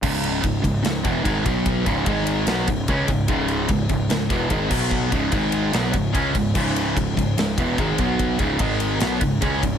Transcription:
<<
  \new Staff \with { instrumentName = "Distorted electric guitar" } { \clef bass \time 4/4 \key cis \minor \tempo 4 = 147 <cis, gis, cis>4 <cis, gis,>8 <cis, gis,>8 <cis, gis,>8 <e, b, e>8 <gis, dis gis>8 <b, fis b>8~ | <b, fis b>8 <cis, gis, cis>8 <gis, dis gis>4 <b, fis b>8 <cis, gis,>8 <cis gis cis'>8 <cis, gis,>8 | <cis, gis, cis>4 <cis, gis,>8 <cis, gis,>8 <cis, gis,>8 <e, b, e>8 <gis, dis gis>8 <b, fis b>8~ | <b, fis b>8 <cis, gis, cis>8 <gis, dis gis>4 <b, fis b>8 <cis, gis,>8 <cis gis cis'>8 <cis, gis,>8 |
<cis, gis, cis>4 <cis, gis,>8 <cis, gis,>8 <cis, gis,>8 <e, b, e>8 <gis, dis gis>8 <b, fis b>8~ | <b, fis b>8 <cis, gis, cis>8 <gis, dis gis>4 <b, fis b>8 <cis, gis,>8 <cis gis cis'>8 <cis, gis,>8 | }
  \new Staff \with { instrumentName = "Picked electric bass" } { \clef bass \time 4/4 \key cis \minor cis,,4 cis,,8 cis,,8 cis,,8 e,,8 gis,,8 b,,8~ | b,,8 cis,,8 gis,,4 b,,8 cis,,8 cis,8 cis,,8 | cis,,4 cis,,8 cis,,8 cis,,8 e,,8 gis,,8 b,,8~ | b,,8 cis,,8 gis,,4 b,,8 cis,,8 cis,8 cis,,8 |
cis,,4 cis,,8 cis,,8 cis,,8 e,,8 gis,,8 b,,8~ | b,,8 cis,,8 gis,,4 b,,8 cis,,8 cis,8 cis,,8 | }
  \new DrumStaff \with { instrumentName = "Drums" } \drummode { \time 4/4 <cymc bd>8 cymr8 <bd cymr>8 <bd cymr>8 <cymr sn>8 <bd cymr>8 <bd cymr>8 <bd cymr>8 | <bd cymr>8 <bd cymr>8 <bd cymr>8 cymr8 <cymr sn>8 <bd cymr>8 <bd cymr>8 <bd cymr>8 | <bd cymr>8 cymr8 <bd cymr>8 <bd cymr>8 <cymr sn>8 <bd cymr>8 <bd cymr>8 <cymc bd>8 | bd8 <bd cymr>8 <bd cymr>8 cymr8 <cymr sn>8 <bd cymr>8 <bd cymr>8 <bd cymr>8 |
<cymc bd>8 cymr8 <bd cymr>8 <bd cymr>8 <cymr sn>8 <bd cymr>8 <bd cymr>8 <bd cymr>8 | <bd cymr>8 <bd cymr>8 <bd cymr>8 cymr8 <cymr sn>8 <bd cymr>8 <bd cymr>8 <bd cymr>8 | }
>>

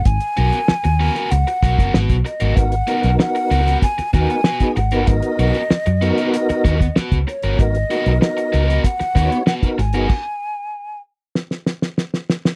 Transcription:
<<
  \new Staff \with { instrumentName = "Flute" } { \time 4/4 \key gis \minor \tempo 4 = 96 gis''2 fis''4 r8 dis''8 | fis''4 fis''4 gis''8 gis''4 fis''8 | dis''2 dis''4 r8 cis''8 | dis''4 dis''4 fis''4 fis''8 gis''8~ |
gis''4. r2 r8 | }
  \new Staff \with { instrumentName = "Overdriven electric guitar" } { \time 4/4 \key gis \minor r8 <b fis' ais'>16 r8. <b fis' ais'>16 <b fis' ais'>16 r8 <b fis' ais'>16 <b fis' ais'>16 <b fis' b'>16 r8 <b fis' ais'>16 | r8 <b fis' ais'>16 r8. <b fis' ais'>16 <b fis' ais'>16 r8 <b fis' ais'>16 r16 <b fis' b'>16 r8 <b fis' ais'>16 | r8 <b fis' ais'>16 r8. <b fis' ais'>16 <b fis' ais'>16 r8 <b fis' ais'>16 r16 <b fis' b'>16 r8 <b fis' ais'>16 | r8 <b fis' ais'>16 r8. <b fis' ais'>16 <b fis' ais'>16 r8 <b fis' ais'>16 r16 <b fis' b'>16 r8 <b fis' ais'>16 |
r1 | }
  \new Staff \with { instrumentName = "Tonewheel organ" } { \time 4/4 \key gis \minor r1 | <b dis' fis' ais'>16 r16 <b dis' fis' ais'>4~ <b dis' fis' ais'>16 r8. <b dis' fis' ais'>8 r16 <b dis' fis' gis'>16 r16 <b dis' fis' ais'>16~ | <b dis' fis' ais'>8. r8. <b dis' fis' a' ais'>4~ <b dis' fis' a' ais'>16 r4 r16 | <b dis' fis' ais'>16 r16 <ais b dis' fis' ais'>4~ <ais b dis' fis' ais'>16 r8. <b dis' fis' cis''>8 r16 <b dis' fis' ais'>16 r16 <b dis' fis' gis'>16 |
r1 | }
  \new Staff \with { instrumentName = "Fingered electric bass" } { \clef bass \time 4/4 \key gis \minor gis,,16 r16 b,,16 r8 dis,8 r16 cis,16 r16 b,,16 fis,,16 gis,,16 b,,16 r16 gis,,16 | gis,,8 r16 b,,16 r8 cis,8 r8 dis,16 r8. gis,,16 g,,16 | gis,,16 r16 b,,16 r8 fis,8 r8. dis,8 r16 cis,16 r16 g,,16 | gis,,8 r16 b,,16 r8 cis,8 r8 dis,16 r8. gis,,16 g,,16 |
r1 | }
  \new DrumStaff \with { instrumentName = "Drums" } \drummode { \time 4/4 <hh bd>16 hh16 hh16 hh16 sn16 hh16 hho16 <hh sn>16 hh16 hh16 <hh bd>16 <hh bd>16 sn16 <hh bd>16 hh16 hh16 | <hh bd>16 hh16 hh16 hh16 sn16 hh16 hh16 <hh sn>16 <hh bd>16 <hh sn>16 <hh bd>16 hh16 sn16 <hh bd>16 hh16 hh16 | <hh bd>16 hh16 hh16 hh16 sn16 hh16 hh16 <hh sn>16 hh16 hh16 <hh bd>16 <hh bd>16 sn16 <hh bd>16 hh16 hh16 | <hh bd>16 hh16 hh16 hh16 sn16 hh16 hh16 <hh sn>16 <hh bd>16 <hh sn>16 <hh bd>16 hh16 sn16 <hh bd>16 hh16 hh16 |
<cymc bd>4 r4 sn16 sn16 sn16 sn16 sn16 sn16 sn16 sn16 | }
>>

